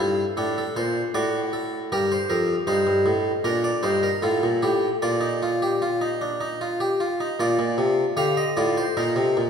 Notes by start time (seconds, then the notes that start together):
Already playing: C5
0.00 G2 E4
0.37 A2 D4 A4
0.58 A4
0.76 A#2 C5
1.14 A2 F#4 D5
1.53 A4
1.92 G2 G4 A#4
2.12 C5
2.30 F2 A#4
2.67 G2 D#4 C5
2.87 G2
3.06 A2
3.44 A#2 D4 A#4
3.64 D5
3.83 G2 D#4 C5
4.03 A#4
4.22 A2 F4 A4
4.43 A#2
4.62 A2 G4
5.02 A#2 F4 D5
5.21 D#4
5.43 F4
5.62 G4
5.82 F4
6.01 D#4
6.21 D4
6.41 D#4
6.61 F4
6.80 G4
7.00 F4
7.20 D#4
7.40 A#2 F4 D5
7.59 A#2
7.78 C3
8.17 D3 G4 F5
8.37 D#5
8.57 A2 F4 D5
8.77 C5
8.97 A#2 D#4 A#4
9.16 C3
9.37 A#2